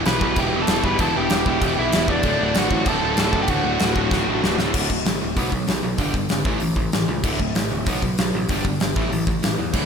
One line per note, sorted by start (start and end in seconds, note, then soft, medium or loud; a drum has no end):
0.05 0.19 B1 medium
0.05 0.22 E2 loud
0.05 0.20 B2 loud
0.05 0.21 E3 loud
0.05 0.36 B4 medium
0.05 0.38 B5 loud
0.05 snare loud
0.05 crash medium
0.21 0.34 B1 loud
0.21 0.36 E2 medium
0.21 0.37 B2 medium
0.21 0.37 E3 medium
0.21 kick loud
0.36 0.49 E1 loud
0.36 0.54 E2 medium
0.36 0.53 B2 loud
0.36 0.52 E3 loud
0.36 0.60 G4 loud
0.36 0.62 G5 loud
0.36 kick loud
0.36 crash medium
0.53 0.65 E1 loud
0.53 0.67 E2 medium
0.53 0.68 B2 medium
0.53 0.68 E3 loud
0.61 0.83 A4 medium
0.61 0.83 A5 loud
0.67 0.80 E1 loud
0.67 0.85 E2 medium
0.67 0.84 B2 loud
0.67 0.83 E3 loud
0.67 snare loud
0.67 crash medium
0.84 0.96 G1 loud
0.84 0.99 E2 medium
0.84 1.00 B2 loud
0.84 0.99 E3 medium
0.84 0.99 B4 medium
0.84 1.01 B5 loud
0.84 kick medium
0.99 1.12 E1 loud
0.99 1.15 E2 loud
0.99 1.15 B2 loud
0.99 1.15 E3 loud
0.99 1.14 A4 medium
0.99 1.16 A5 loud
0.99 kick loud
0.99 crash medium
1.16 1.28 E1 medium
1.16 1.30 E2 medium
1.16 1.31 B2 loud
1.16 1.32 E3 loud
1.16 1.75 G4 medium
1.16 1.81 G5 medium
1.30 1.43 E1 medium
1.30 1.47 E2 loud
1.30 1.46 B2 loud
1.30 1.46 E3 loud
1.30 snare loud
1.30 crash medium
1.46 1.59 E1 medium
1.46 1.61 E2 medium
1.46 1.62 B2 loud
1.46 1.62 E3 loud
1.46 kick loud
1.61 1.74 E1 loud
1.61 1.78 E2 loud
1.61 1.77 B2 loud
1.61 1.76 E3 loud
1.61 kick loud
1.61 crash medium
1.78 1.91 B1 medium
1.78 1.92 E2 medium
1.78 1.93 B2 loud
1.78 1.92 E3 loud
1.78 2.07 E4 medium
1.78 2.10 E5 loud
1.92 2.06 E1 loud
1.92 2.08 E2 medium
1.92 2.08 B2 medium
1.92 2.07 E3 loud
1.92 snare loud
1.92 crash medium
2.08 2.21 E1 loud
2.08 2.24 E2 medium
2.08 2.24 B2 medium
2.08 2.23 E3 loud
2.08 2.53 D4 medium
2.08 2.58 D5 medium
2.08 kick medium
2.23 2.37 D1 loud
2.23 2.40 D2 loud
2.23 2.39 A2 loud
2.23 2.39 D3 loud
2.23 kick loud
2.23 crash medium
2.39 2.53 D1 medium
2.39 2.55 D2 medium
2.39 2.54 A2 medium
2.39 2.56 D3 loud
2.54 2.68 A1 medium
2.54 2.72 D2 loud
2.54 2.71 A2 loud
2.54 2.71 D3 loud
2.54 2.86 F#4 medium
2.54 2.88 F#5 medium
2.54 snare loud
2.54 crash medium
2.71 2.83 A1 loud
2.71 2.87 D2 medium
2.71 2.87 A2 loud
2.71 2.88 D3 loud
2.71 kick medium
2.86 2.99 D1 loud
2.86 3.04 D2 loud
2.86 3.03 A2 loud
2.86 3.03 D3 loud
2.86 3.16 A4 medium
2.86 3.17 A5 loud
2.86 kick loud
2.86 crash medium
3.03 3.15 D1 loud
3.03 3.18 D2 medium
3.03 3.18 A2 loud
3.03 3.19 D3 loud
3.17 3.30 D1 loud
3.17 3.34 D2 medium
3.17 3.33 A2 loud
3.17 3.33 D3 loud
3.17 3.41 A4 medium
3.17 3.42 A5 medium
3.17 snare loud
3.17 crash medium
3.33 3.46 F#1 loud
3.33 3.47 D2 medium
3.33 3.48 A2 medium
3.33 3.48 D3 loud
3.33 kick medium
3.42 3.49 G4 medium
3.42 3.50 G5 medium
3.48 3.62 D1 loud
3.48 3.64 D2 loud
3.48 3.64 A2 loud
3.48 3.63 D3 loud
3.48 4.55 F#4 medium
3.48 4.59 F#5 medium
3.48 kick medium
3.48 crash medium
3.64 3.77 D1 medium
3.64 3.79 D2 medium
3.64 3.79 A2 medium
3.64 3.80 D3 medium
3.79 3.93 D1 loud
3.79 3.95 D2 loud
3.79 3.95 A2 loud
3.79 3.95 D3 loud
3.79 snare loud
3.79 crash medium
3.96 4.09 D1 loud
3.96 4.10 D2 medium
3.96 4.10 A2 medium
3.96 4.10 D3 medium
3.96 kick medium
4.11 4.24 D1 loud
4.11 4.27 D2 loud
4.11 4.26 A2 loud
4.11 4.26 D3 loud
4.11 kick loud
4.11 snare medium
4.27 4.40 A1 medium
4.27 4.42 D2 medium
4.27 4.42 A2 medium
4.27 4.43 D3 loud
4.44 4.56 D1 loud
4.44 4.58 D2 loud
4.44 4.58 A2 medium
4.44 4.58 D3 loud
4.44 snare loud
4.58 4.71 D1 medium
4.58 4.73 D2 medium
4.58 4.73 A2 medium
4.58 4.73 D3 loud
4.58 snare medium
4.74 4.87 D1 loud
4.74 4.89 D2 medium
4.74 4.89 A2 loud
4.74 4.90 D3 loud
4.74 kick loud
4.74 crash loud
4.90 5.03 D1 medium
4.90 5.04 D2 medium
4.90 5.04 A2 medium
4.90 kick medium
5.05 5.18 A1 medium
5.05 5.19 D2 medium
5.05 5.20 A2 medium
5.05 snare loud
5.05 open hi-hat medium
5.22 5.35 D1 medium
5.22 5.35 D2 medium
5.22 5.35 A2 medium
5.36 5.50 B1 loud
5.36 5.51 B2 medium
5.36 5.51 F#3 loud
5.36 5.51 B3 loud
5.36 kick loud
5.36 open hi-hat medium
5.52 5.65 B1 medium
5.52 5.66 B2 medium
5.52 5.66 F#3 medium
5.52 kick medium
5.67 5.81 B1 medium
5.67 5.81 B2 medium
5.67 5.82 F#3 medium
5.67 snare loud
5.67 open hi-hat medium
5.83 5.96 B1 loud
5.83 5.97 B2 medium
5.83 5.97 F#3 medium
5.98 6.12 G1 loud
5.98 6.13 G2 loud
5.98 6.13 D3 loud
5.98 6.13 G3 loud
5.98 kick loud
5.98 open hi-hat medium
6.13 6.27 G1 medium
6.13 6.28 G2 medium
6.13 6.29 D3 medium
6.13 kick medium
6.29 6.44 G#1 medium
6.29 6.44 G2 medium
6.29 6.44 D3 loud
6.29 snare loud
6.29 open hi-hat medium
6.45 6.58 A1 loud
6.45 6.59 A2 medium
6.45 6.59 E3 loud
6.45 6.61 A3 loud
6.45 kick loud
6.60 6.74 A1 loud
6.60 6.75 A2 medium
6.60 6.75 E3 medium
6.60 open hi-hat medium
6.76 6.89 A1 medium
6.76 6.91 A2 medium
6.76 6.91 E3 medium
6.76 kick medium
6.92 7.06 A1 medium
6.92 7.07 A2 medium
6.92 7.07 E3 medium
6.92 snare loud
6.92 open hi-hat medium
7.08 7.21 C#2 medium
7.08 7.22 A2 medium
7.08 7.23 E3 medium
7.24 7.37 D1 loud
7.24 7.38 D2 medium
7.24 7.39 A2 loud
7.24 7.39 D3 loud
7.24 kick loud
7.24 crash medium
7.40 7.53 D1 medium
7.40 7.54 D2 medium
7.40 7.54 A2 medium
7.40 kick medium
7.55 7.68 A1 medium
7.55 7.70 D2 medium
7.55 7.70 A2 loud
7.55 snare loud
7.55 open hi-hat medium
7.72 7.84 D1 medium
7.72 7.85 D2 medium
7.72 7.85 A2 medium
7.86 8.00 B1 loud
7.86 8.02 B2 medium
7.86 8.02 F#3 loud
7.86 8.02 B3 loud
7.86 kick loud
7.86 open hi-hat medium
8.02 8.15 B1 medium
8.02 8.17 B2 medium
8.02 8.17 F#3 medium
8.02 kick medium
8.18 8.31 B1 medium
8.18 8.32 B2 medium
8.18 8.32 F#3 medium
8.18 snare loud
8.18 open hi-hat medium
8.34 8.47 A1 loud
8.34 8.48 B2 medium
8.34 8.48 F#3 medium
8.49 8.62 G1 loud
8.49 8.63 G2 medium
8.49 8.64 D3 loud
8.49 8.64 G3 loud
8.49 kick loud
8.49 open hi-hat medium
8.65 8.78 G1 medium
8.65 8.79 G2 medium
8.65 8.79 D3 medium
8.65 kick medium
8.80 8.94 G1 medium
8.80 8.94 G2 medium
8.80 8.94 D3 medium
8.80 snare loud
8.80 open hi-hat medium
8.96 9.09 A1 medium
8.96 9.10 A2 medium
8.96 9.10 E3 medium
8.96 9.11 A3 medium
8.96 kick loud
9.11 9.25 A1 loud
9.11 9.25 A2 medium
9.11 9.26 E3 medium
9.11 open hi-hat medium
9.27 9.40 A1 medium
9.27 9.42 A2 medium
9.27 9.42 E3 medium
9.27 kick medium
9.43 9.56 A1 medium
9.43 9.56 A2 medium
9.43 9.57 E3 medium
9.43 snare loud
9.43 open hi-hat medium
9.58 9.72 E2 medium
9.58 9.72 A2 medium
9.58 9.73 E3 medium
9.73 9.86 D1 medium
9.73 9.86 D2 medium
9.73 9.86 A2 loud
9.73 9.86 D3 loud
9.73 kick loud
9.73 crash medium